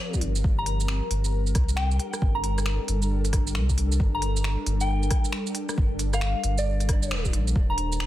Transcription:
0.00 0.44 F3 medium
0.00 1.08 C4 loud
0.00 2.14 G4 medium
0.00 8.06 A#4 medium
0.14 kick medium
0.14 shaker soft
0.21 0.43 G1 medium
0.21 open hi-hat medium
0.35 shaker medium
0.44 1.01 G1 loud
0.44 7.55 G3 medium
0.44 kick loud
0.58 0.81 A#5 medium
0.66 open hi-hat medium
0.80 shaker medium
0.85 8.06 D4 medium
0.85 finger snap loud
0.96 8.06 A4 medium
1.11 1.54 G1 loud
1.11 open hi-hat medium
1.25 shaker medium
1.47 shaker soft
1.55 1.99 C2 medium
1.55 kick loud
1.55 cross-stick soft
1.55 open hi-hat medium
1.69 shaker medium
1.76 2.01 G5 medium
1.76 finger snap loud
1.91 shaker soft
1.99 open hi-hat medium
2.13 cross-stick medium
2.13 shaker medium
2.22 2.79 G1 loud
2.22 kick loud
2.35 2.41 A#5 medium
2.43 2.53 A#5 medium
2.43 open hi-hat medium
2.58 cross-stick medium
2.58 shaker medium
2.66 finger snap loud
2.88 3.57 G1 loud
2.88 open hi-hat medium
3.02 shaker medium
3.25 open hi-hat soft
3.25 shaker soft
3.33 kick loud
3.33 cross-stick medium
3.33 open hi-hat medium
3.47 shaker medium
3.55 3.99 C2 loud
3.55 finger snap loud
3.69 kick medium
3.69 shaker soft
3.78 open hi-hat medium
3.92 shaker medium
4.00 4.57 G1 medium
4.00 kick loud
4.15 4.37 A#5 medium
4.22 open hi-hat medium
4.36 shaker medium
4.44 finger snap loud
4.66 5.10 G1 loud
4.66 open hi-hat medium
4.81 5.04 G5 medium
4.81 shaker medium
5.03 shaker soft
5.11 kick loud
5.11 cross-stick medium
5.11 open hi-hat medium
5.25 shaker medium
5.33 finger snap loud
5.47 shaker soft
5.55 open hi-hat medium
5.69 cross-stick medium
5.69 shaker medium
5.78 6.34 G1 loud
5.78 kick loud
5.99 open hi-hat medium
5.99 shaker soft
6.13 6.37 F5 loud
6.13 cross-stick medium
6.13 shaker medium
6.21 finger snap loud
6.44 7.13 G1 loud
6.44 open hi-hat medium
6.58 7.19 D5 medium
6.58 shaker medium
6.80 open hi-hat soft
6.80 shaker soft
6.89 kick loud
6.89 cross-stick medium
6.89 open hi-hat medium
7.03 shaker medium
7.11 7.34 D1 loud
7.11 finger snap loud
7.25 kick medium
7.25 shaker soft
7.33 7.54 A#1 loud
7.33 open hi-hat medium
7.48 shaker medium
7.55 8.06 D#1 loud
7.55 8.06 D#3 medium
7.55 kick loud
7.65 8.06 A#3 medium
7.70 7.93 A#5 medium
7.78 open hi-hat medium
7.92 shaker medium
8.00 finger snap loud

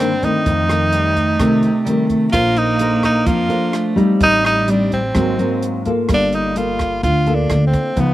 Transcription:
0.00 0.43 G2 medium
0.00 0.41 D3 medium
0.00 0.13 D#3 medium
0.00 0.13 A#3 medium
0.00 0.26 C4 loud
0.00 0.13 D4 medium
0.22 0.65 D#3 medium
0.22 0.65 A3 medium
0.22 0.66 C4 medium
0.22 2.11 D#4 loud
0.22 kick soft
0.22 closed hi-hat soft
0.46 1.37 F2 medium
0.46 1.36 F2 medium
0.46 0.94 F3 medium
0.46 kick medium
0.46 closed hi-hat soft
0.68 1.35 D#3 medium
0.68 1.35 A3 medium
0.68 1.36 C4 medium
0.68 cross-stick medium
0.68 closed hi-hat soft
0.92 1.17 G3 loud
0.92 closed hi-hat soft
1.16 1.86 A3 loud
1.16 kick soft
1.16 closed hi-hat soft
1.39 1.61 C2 medium
1.39 2.31 C3 medium
1.39 1.69 D#3 medium
1.39 1.70 A3 medium
1.39 1.70 C4 medium
1.39 kick medium
1.39 cross-stick medium
1.39 closed hi-hat soft
1.63 closed hi-hat soft
1.85 2.29 D#3 medium
1.85 2.10 G3 medium
1.85 2.30 A3 medium
1.85 2.30 C4 medium
1.85 closed hi-hat soft
2.08 2.31 A3 medium
2.08 kick soft
2.08 closed hi-hat soft
2.32 3.23 A#1 medium
2.32 3.74 A#3 loud
2.32 3.25 A#3 medium
2.32 2.76 D4 soft
2.32 2.59 F4 loud
2.32 2.76 A4 medium
2.32 2.76 C5 medium
2.32 kick medium
2.32 cross-stick medium
2.32 closed hi-hat soft
2.57 3.04 D#4 loud
2.57 closed hi-hat soft
2.79 3.47 D4 medium
2.79 3.47 A4 medium
2.79 3.47 C5 medium
2.79 closed hi-hat soft
3.03 3.28 D#4 medium
3.03 kick soft
3.03 cross-stick medium
3.03 closed hi-hat soft
3.26 3.49 F2 medium
3.26 4.19 F3 medium
3.26 3.97 F4 loud
3.26 kick medium
3.26 closed hi-hat soft
3.49 3.93 D4 medium
3.49 3.93 A4 medium
3.49 3.93 C5 medium
3.49 closed hi-hat soft
3.73 4.19 A3 loud
3.73 cross-stick medium
3.73 closed hi-hat soft
3.96 4.63 G3 medium
3.96 4.64 C4 medium
3.96 4.64 D#4 medium
3.96 kick soft
3.96 closed hi-hat soft
4.20 5.11 A1 medium
4.20 5.12 A2 medium
4.20 5.17 G3 medium
4.20 4.44 D#4 loud
4.20 kick medium
4.20 closed hi-hat soft
4.45 4.72 D#4 loud
4.45 cross-stick medium
4.45 closed hi-hat soft
4.68 4.99 G3 medium
4.68 5.00 C4 medium
4.68 4.93 D4 medium
4.68 5.00 D#4 medium
4.68 closed hi-hat soft
4.92 5.83 C4 medium
4.92 kick soft
4.92 closed hi-hat soft
5.15 5.37 G#1 medium
5.15 6.07 G#2 medium
5.15 5.35 F#3 medium
5.15 5.86 G#3 medium
5.15 5.35 A#3 medium
5.15 5.35 C4 medium
5.15 kick medium
5.15 cross-stick medium
5.15 closed hi-hat soft
5.38 5.81 F#3 medium
5.38 5.82 A#3 medium
5.38 5.82 C4 medium
5.38 closed hi-hat soft
5.63 closed hi-hat soft
5.85 6.52 A#3 medium
5.85 6.53 F4 medium
5.85 6.53 A4 medium
5.85 kick soft
5.85 closed hi-hat soft
6.08 6.99 G1 medium
6.08 7.00 G3 medium
6.08 kick medium
6.08 cross-stick medium
6.08 closed hi-hat soft
6.14 6.37 D4 loud
6.33 6.59 D#4 medium
6.33 closed hi-hat soft
6.56 7.03 A#3 medium
6.56 7.03 F4 medium
6.56 7.03 A4 medium
6.56 closed hi-hat soft
6.79 kick soft
6.79 cross-stick soft
6.79 closed hi-hat soft
7.03 7.47 D2 medium
7.03 7.94 D3 medium
7.03 7.36 F4 loud
7.03 kick soft
7.03 closed hi-hat soft
7.26 7.93 A#3 medium
7.26 7.93 F4 medium
7.26 7.94 A4 medium
7.26 closed hi-hat soft
7.35 7.66 D4 medium
7.50 7.72 D2 medium
7.50 cross-stick medium
7.50 closed hi-hat soft
7.67 8.01 C4 medium
7.73 kick medium
7.73 closed hi-hat soft
7.96 8.14 C#2 medium
7.96 8.14 C#3 medium
7.96 8.14 F3 medium
7.96 8.14 B3 medium
7.96 8.14 D#4 soft
7.96 kick medium
7.96 closed hi-hat soft
8.00 8.14 B3 medium

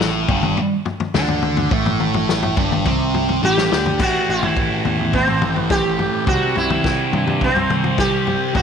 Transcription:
0.00 0.25 A1 medium
0.00 0.28 A2 medium
0.00 0.28 A3 medium
0.00 snare medium
0.29 0.55 G1 medium
0.29 0.56 G2 medium
0.29 0.57 G3 medium
0.29 kick loud
0.29 floor tom medium
0.43 mid tom medium
0.57 muted distorted electric guitar stroke medium
0.57 muted picked electric bass stroke soft
0.57 floor tom medium
0.86 floor tom medium
1.00 floor tom medium
1.14 1.67 D2 medium
1.14 1.70 D3 medium
1.14 1.71 D4 medium
1.14 snare medium
1.14 mid tom medium
1.28 floor tom medium
1.42 mid tom medium
1.57 floor tom medium
1.71 2.52 A1 medium
1.71 2.56 A2 medium
1.71 2.56 A3 medium
1.71 kick loud
1.71 floor tom medium
1.86 floor tom medium
2.00 mid tom medium
2.14 floor tom medium
2.29 snare medium
2.43 floor tom medium
2.56 2.83 G1 medium
2.56 2.84 G2 medium
2.56 2.84 G3 medium
2.56 kick loud
2.56 floor tom medium
2.72 mid tom medium
2.85 3.39 C2 medium
2.85 3.41 C3 medium
2.85 3.42 C4 loud
2.85 kick loud
2.85 floor tom medium
3.14 floor tom medium
3.29 floor tom medium
3.43 3.69 A1 loud
3.43 3.70 A2 medium
3.43 3.70 A3 medium
3.43 4.02 G4 loud
3.43 high tom medium
3.58 snare medium
3.71 3.98 D2 medium
3.71 3.98 D3 medium
3.71 3.99 D4 loud
3.71 snare medium
3.86 floor tom medium
3.99 4.10 A1 medium
3.99 6.25 A2 medium
3.99 6.27 E3 medium
3.99 6.27 A3 medium
3.99 4.30 F#4 medium
3.99 kick loud
3.99 floor tom medium
3.99 crash medium
4.29 4.50 A1 medium
4.29 5.17 E4 medium
4.43 floor tom medium
4.43 mid tom medium
4.57 kick medium
4.85 4.96 E2 medium
4.85 mid tom medium
5.00 5.21 E2 medium
5.13 5.57 C4 medium
5.13 kick medium
5.13 floor tom medium
5.27 5.39 A1 medium
5.27 floor tom medium
5.42 6.07 A1 medium
5.42 floor tom medium
5.42 mid tom medium
5.56 5.73 B3 medium
5.56 floor tom medium
5.70 6.28 G4 loud
5.70 kick loud
5.70 snare medium
5.99 floor tom medium
6.26 6.38 C2 medium
6.26 8.53 C3 medium
6.26 8.54 G3 medium
6.26 8.56 C4 medium
6.26 6.57 F#4 medium
6.26 kick loud
6.26 floor tom medium
6.56 6.77 C2 loud
6.56 7.45 E4 medium
6.56 floor tom medium
6.70 floor tom medium
6.70 mid tom medium
6.84 kick medium
6.84 snare medium
7.13 7.24 G2 medium
7.13 mid tom medium
7.27 7.48 G2 medium
7.27 floor tom medium
7.41 8.01 C4 medium
7.41 kick medium
7.41 floor tom medium
7.55 7.66 C2 medium
7.55 floor tom medium
7.70 8.34 C2 medium
7.70 floor tom medium
7.70 mid tom medium
7.84 floor tom medium
7.98 8.56 G4 medium
7.98 kick medium
7.98 snare medium
8.27 floor tom medium
8.54 8.62 A1 medium
8.54 8.62 A2 medium
8.54 8.62 E3 medium
8.54 8.62 A3 medium
8.54 8.62 F#4 medium
8.54 kick loud
8.54 floor tom medium

